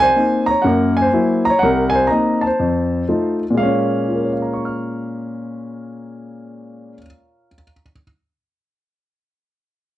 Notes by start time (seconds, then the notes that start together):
0.00 C5 G#5
0.16 A#3 C4 D#4
0.46 C#5 A#5
0.62 F#2 A#3 F#5
0.67 A#4
0.97 G#5
1.02 C5
1.13 F#3 A#3 E4
1.45 A#5
1.50 C#5
1.59 C2 F#5
1.63 A#4
1.90 G#5
1.95 C5
2.07 C4 D#4 D#5 A#5
2.11 A#3
2.41 A5
2.47 C5
2.59 F2
3.09 A3 D#4 F4
3.50 A#2 G#3
3.57 A#3 F5
3.63 C#4
4.08 F4
4.15 A#4
4.24 C#5
4.33 F5
4.42 A#5
4.53 C#6
4.65 F6